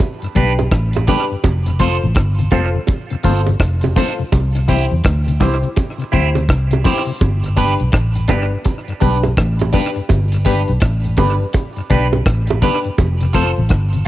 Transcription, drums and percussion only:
0.00 kick, high bongo
0.22 closed hi-hat
0.35 kick, closed hi-hat
0.59 closed hi-hat, high bongo
0.71 kick, cross-stick, closed hi-hat
0.93 closed hi-hat, high bongo
1.08 kick, closed hi-hat, low bongo
1.44 kick, closed hi-hat, high bongo
1.66 closed hi-hat
1.79 kick, closed hi-hat
2.15 kick, cross-stick, closed hi-hat
2.39 closed hi-hat
2.51 kick, closed hi-hat, high bongo, low bongo
2.87 kick, closed hi-hat, high bongo
3.10 closed hi-hat
3.23 kick, closed hi-hat
3.46 closed hi-hat, high bongo
3.60 kick, cross-stick, closed hi-hat
3.81 closed hi-hat, high bongo
3.96 kick, closed hi-hat, low bongo
4.32 kick, closed hi-hat, high bongo
4.55 closed hi-hat
4.68 kick, closed hi-hat
5.04 kick, cross-stick, closed hi-hat
5.28 closed hi-hat
5.40 kick, cross-stick, closed hi-hat, high bongo, low bongo
5.63 closed hi-hat
5.76 kick, closed hi-hat, high bongo
5.99 closed hi-hat
6.12 kick, closed hi-hat
6.35 closed hi-hat, high bongo
6.49 kick, cross-stick, closed hi-hat
6.71 closed hi-hat, high bongo
6.85 kick, open hi-hat, low bongo
7.21 kick, closed hi-hat, high bongo
7.44 closed hi-hat
7.57 kick, closed hi-hat
7.80 closed hi-hat
7.92 kick, cross-stick, closed hi-hat
8.16 closed hi-hat
8.28 kick, cross-stick, closed hi-hat, high bongo, low bongo
8.65 kick, closed hi-hat, high bongo
8.88 closed hi-hat
9.01 kick, closed hi-hat
9.23 closed hi-hat, high bongo
9.37 kick, cross-stick, closed hi-hat
9.59 closed hi-hat, high bongo
9.74 kick, closed hi-hat, low bongo
9.96 closed hi-hat
10.09 kick, closed hi-hat, high bongo
10.32 closed hi-hat
10.45 kick, closed hi-hat
10.68 closed hi-hat
10.80 kick, cross-stick, closed hi-hat
11.04 closed hi-hat
11.17 kick, closed hi-hat, high bongo, low bongo
11.53 kick, closed hi-hat, high bongo
11.76 closed hi-hat
11.90 kick, closed hi-hat
12.13 high bongo
12.26 kick, cross-stick, closed hi-hat
12.47 closed hi-hat, high bongo
12.62 kick, closed hi-hat, low bongo
12.84 closed hi-hat
12.98 kick, closed hi-hat, high bongo
13.21 closed hi-hat
13.34 kick, closed hi-hat
13.69 kick, cross-stick, closed hi-hat
13.93 closed hi-hat

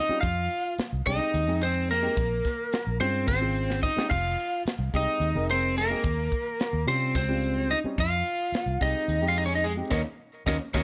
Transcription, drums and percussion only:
0.23 kick, closed hi-hat
0.51 closed hi-hat
0.78 snare, closed hi-hat
1.06 kick, closed hi-hat
1.34 closed hi-hat
1.62 closed hi-hat
1.90 closed hi-hat
2.17 kick, closed hi-hat
2.45 kick, snare, closed hi-hat
2.73 snare, closed hi-hat
3.00 closed hi-hat
3.27 kick, closed hi-hat
3.55 closed hi-hat
3.70 snare
3.83 kick
3.99 snare
4.11 kick, closed hi-hat, crash
4.39 closed hi-hat
4.67 snare, closed hi-hat
4.94 kick, closed hi-hat
5.22 closed hi-hat
5.49 snare, closed hi-hat
5.77 closed hi-hat
6.04 kick, closed hi-hat
6.32 kick, closed hi-hat
6.60 snare, closed hi-hat
6.87 closed hi-hat
7.15 kick, snare, closed hi-hat
7.43 closed hi-hat
7.72 closed hi-hat
7.98 kick, closed hi-hat
8.26 closed hi-hat
8.54 snare, closed hi-hat
8.81 kick, snare, closed hi-hat
9.09 closed hi-hat
9.36 closed hi-hat
9.64 closed hi-hat
9.91 kick, snare
10.47 kick, snare
10.74 kick, snare

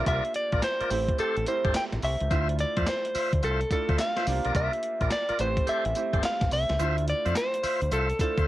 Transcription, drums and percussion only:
0.06 kick, closed hi-hat, tambourine
0.25 closed hi-hat
0.34 closed hi-hat
0.52 kick, closed hi-hat
0.62 snare, clap, closed hi-hat, tambourine
0.81 closed hi-hat
0.90 open hi-hat, tambourine
1.08 kick, closed hi-hat
1.18 closed hi-hat, tambourine
1.37 closed hi-hat
1.46 closed hi-hat, tambourine
1.65 kick, closed hi-hat
1.74 snare, clap, closed hi-hat, tambourine
1.92 snare, closed hi-hat
2.02 open hi-hat, tambourine
2.20 closed hi-hat
2.31 kick, closed hi-hat, tambourine
2.49 closed hi-hat
2.59 closed hi-hat
2.76 kick, closed hi-hat
2.87 snare, clap, closed hi-hat, tambourine
3.05 closed hi-hat
3.15 open hi-hat, tambourine
3.33 kick, closed hi-hat
3.43 closed hi-hat, tambourine
3.61 closed hi-hat
3.71 kick, closed hi-hat, tambourine
3.89 kick, closed hi-hat
3.99 snare, clap, closed hi-hat, tambourine
4.17 snare, closed hi-hat
4.27 open hi-hat, tambourine
4.45 closed hi-hat
4.55 kick, closed hi-hat, tambourine
4.74 closed hi-hat
4.83 closed hi-hat
5.01 kick, closed hi-hat
5.11 snare, clap, closed hi-hat, tambourine
5.29 closed hi-hat
5.39 closed hi-hat, tambourine
5.57 kick, closed hi-hat
5.67 closed hi-hat, tambourine
5.85 closed hi-hat
5.95 closed hi-hat, tambourine
6.13 kick, closed hi-hat
6.23 snare, clap, closed hi-hat, tambourine
6.41 kick, snare, closed hi-hat
6.51 open hi-hat, tambourine
6.69 snare, closed hi-hat
6.79 closed hi-hat, tambourine, shaker
6.97 closed hi-hat, shaker
7.07 closed hi-hat
7.25 closed hi-hat, shaker
7.35 snare, clap, closed hi-hat, tambourine, shaker
7.54 closed hi-hat, shaker
7.63 open hi-hat, tambourine
7.82 closed hi-hat, shaker
7.91 closed hi-hat, tambourine, shaker
8.10 closed hi-hat, shaker
8.19 kick, closed hi-hat, tambourine, shaker
8.38 kick, closed hi-hat, shaker

